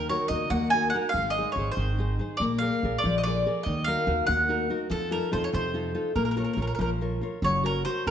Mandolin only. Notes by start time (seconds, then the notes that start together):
0.09 C#5
0.28 D#5
0.50 F#5
0.70 G#5
0.90 F#5
1.09 F5
1.30 D#5
1.52 C#5
1.72 C5
2.37 D5
2.58 F5
2.98 D5
3.18 D#5
3.24 D5
3.63 D#5
3.84 F5
4.27 F#5
4.91 A4
5.12 A#4
5.33 C5
5.44 C#5
5.54 C5
6.16 A#4
6.25 A#4
6.31 A#4
6.37 A#4
6.44 A#4
6.53 A#4
6.62 A#4
6.67 A#4
6.75 A#4
6.81 A#4
7.44 C#5
7.66 A#4
7.85 C5
8.07 A#4